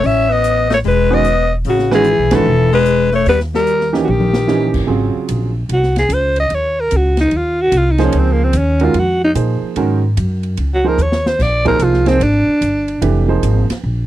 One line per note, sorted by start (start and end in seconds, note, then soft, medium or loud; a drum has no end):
0.04 0.81 A1 medium
0.04 0.31 C#4 medium
0.04 0.34 E5 loud
0.04 open hi-hat soft
0.29 0.69 B3 medium
0.29 0.71 D#5 loud
0.44 closed hi-hat medium
0.70 0.76 A3 medium
0.70 snare medium
0.70 open hi-hat soft
0.74 0.80 C#5 medium
0.84 1.61 E1 medium
0.84 1.12 G#3 medium
0.84 1.15 B4 medium
0.84 open hi-hat soft
1.10 1.23 D#3 medium
1.10 1.24 G#3 medium
1.10 1.51 B3 medium
1.10 1.24 C#4 medium
1.10 1.23 F#4 medium
1.10 1.23 B4 medium
1.10 1.53 D#5 loud
1.24 closed hi-hat soft
1.65 2.15 A1 medium
1.65 1.90 C#3 medium
1.65 open hi-hat soft
1.70 1.92 F#4 medium
1.79 snare soft
1.91 2.04 D#3 medium
1.91 2.32 E3 medium
1.91 2.04 G#3 medium
1.91 2.04 C#4 medium
1.91 2.04 F#4 medium
1.91 2.37 G#4 loud
1.91 2.04 B4 loud
1.91 snare soft
2.04 closed hi-hat medium
2.19 2.31 B1 medium
2.31 2.44 G#1 medium
2.31 2.44 D#3 medium
2.31 2.72 E3 medium
2.31 2.44 G#3 medium
2.31 2.45 C#4 medium
2.31 2.45 F#4 medium
2.31 2.45 B4 medium
2.31 snare medium
2.31 ride medium
2.35 2.73 A4 loud
2.46 3.23 E1 medium
2.72 3.10 G#3 medium
2.72 3.11 B4 loud
2.86 closed hi-hat soft
3.12 3.26 A3 medium
3.12 3.27 C#5 medium
3.12 open hi-hat soft
3.26 4.03 D#2 medium
3.26 3.39 G3 medium
3.26 3.40 B4 medium
3.26 open hi-hat soft
3.40 snare soft
3.54 3.91 G3 medium
3.54 3.92 A#4 medium
3.54 snare soft
3.67 closed hi-hat medium
3.81 snare soft
3.93 4.06 E3 medium
3.93 4.06 A#3 medium
3.93 4.06 C#4 medium
3.93 4.06 D#4 medium
3.93 4.06 G4 medium
3.93 snare soft
4.03 4.09 D#3 soft
4.03 4.12 F#4 medium
4.07 4.70 A#1 medium
4.07 4.75 D#3 medium
4.07 4.76 G4 medium
4.07 high tom soft
4.20 high tom medium
4.33 snare medium
4.48 4.88 E3 medium
4.48 4.89 A#3 medium
4.48 4.89 C#4 medium
4.48 4.89 D#4 medium
4.48 4.89 G4 medium
4.48 snare soft
4.74 4.87 G1 medium
4.74 kick medium
4.74 crash medium
4.87 5.13 G#1 medium
4.87 5.49 C#3 soft
4.87 5.49 F#3 medium
4.87 5.50 C4 soft
4.87 5.50 F4 medium
4.87 5.50 G#4 medium
5.15 muted upright bass stroke soft
5.29 5.68 A#1 medium
5.29 hi-hat pedal soft
5.29 ride medium
5.69 6.08 C2 medium
5.69 ride medium
5.73 5.96 F#4 medium
5.83 snare soft
5.96 6.15 G#4 medium
5.96 snare soft
5.96 ride soft
6.09 6.49 C#2 medium
6.09 hi-hat pedal medium
6.09 ride medium
6.13 6.38 C5 medium
6.36 6.56 D#5 medium
6.36 ride soft
6.50 6.90 D#2 medium
6.50 ride medium
6.55 6.82 C#5 medium
6.80 6.98 A#4 medium
6.91 7.31 C#2 medium
6.91 hi-hat pedal medium
6.91 ride medium
6.97 7.20 F#4 medium
7.17 7.38 D#4 medium
7.17 snare soft
7.17 ride soft
7.31 7.71 D#2 medium
7.31 ride medium
7.37 7.63 F4 medium
7.61 7.79 F#4 loud
7.72 8.12 C2 medium
7.72 hi-hat pedal soft
7.72 ride medium
7.77 7.93 F4 medium
7.91 8.05 D#4 medium
7.98 8.51 F3 medium
7.98 8.51 A#3 medium
7.98 8.51 D#4 medium
7.98 8.51 G#4 medium
7.98 8.51 C5 medium
7.98 snare soft
7.98 ride soft
8.04 8.21 C#4 medium
8.12 8.53 C#2 medium
8.12 ride medium
8.19 8.34 C4 medium
8.32 8.45 A#3 medium
8.44 8.60 C4 medium
8.53 8.93 D#2 loud
8.53 hi-hat pedal medium
8.53 ride medium
8.58 8.85 C#4 medium
8.80 8.94 D#3 medium
8.80 8.94 G#3 medium
8.80 8.93 C#4 medium
8.80 8.93 F#4 medium
8.80 8.94 A#4 medium
8.80 ride soft
8.84 9.00 F4 medium
8.94 9.34 F2 medium
8.94 ride medium
8.99 9.23 F#4 medium
9.24 9.32 D#4 medium
9.35 9.60 A#2 medium
9.35 9.97 F3 soft
9.35 9.97 A#3 soft
9.35 9.97 D#4 medium
9.35 9.97 G#4 medium
9.35 9.97 C5 medium
9.35 hi-hat pedal medium
9.35 ride medium
9.62 muted upright bass stroke soft
9.76 10.15 G#2 medium
9.76 10.00 D#3 medium
9.76 10.00 G#3 medium
9.76 10.01 C#4 medium
9.76 10.00 F#4 medium
9.76 10.00 A#4 medium
9.76 ride medium
10.17 10.56 F#2 medium
10.17 hi-hat pedal soft
10.17 ride medium
10.43 ride soft
10.57 10.97 C#2 medium
10.57 ride medium
10.74 10.90 F#4 medium
10.84 10.97 F3 medium
10.84 10.97 A#3 medium
10.84 10.97 D#4 medium
10.84 10.97 G#4 medium
10.84 11.04 A#4 medium
10.84 10.97 C5 medium
10.98 11.38 D#2 medium
10.98 hi-hat pedal soft
11.02 11.29 C#5 medium
11.12 snare medium
11.26 11.44 C5 medium
11.26 snare medium
11.39 11.79 A#1 medium
11.39 11.67 D5 medium
11.39 kick medium
11.39 snare soft
11.39 crash medium
11.65 12.04 F3 medium
11.65 12.04 A#3 medium
11.65 12.03 D#4 medium
11.65 12.04 G#4 medium
11.65 11.85 A#4 loud
11.65 12.04 C5 medium
11.65 kick medium
11.65 ride soft
11.79 12.19 C2 medium
11.79 hi-hat pedal soft
11.79 ride medium
11.84 12.09 F4 medium
11.94 snare soft
12.06 12.19 F3 medium
12.06 12.19 A#3 soft
12.06 12.25 C4 medium
12.06 12.19 D#4 medium
12.06 12.19 G#4 medium
12.06 12.19 C5 medium
12.06 snare soft
12.06 ride soft
12.20 12.45 G#1 medium
12.20 13.04 D4 medium
12.20 ride medium
12.47 muted upright bass stroke soft
12.61 13.01 G1 medium
12.61 hi-hat pedal soft
12.61 ride medium
12.88 ride soft
13.02 13.41 F1 medium
13.02 13.26 E3 medium
13.02 13.26 A3 medium
13.02 13.26 D4 medium
13.02 13.26 G4 medium
13.02 13.26 B4 medium
13.02 ride medium
13.28 13.64 F3 medium
13.28 13.64 A#3 medium
13.28 13.64 D#4 medium
13.28 13.64 G#4 medium
13.28 13.64 C5 medium
13.43 13.68 G#1 medium
13.43 hi-hat pedal medium
13.43 ride medium
13.70 muted upright bass stroke soft
13.70 snare soft
13.70 ride medium
13.84 14.07 A#1 medium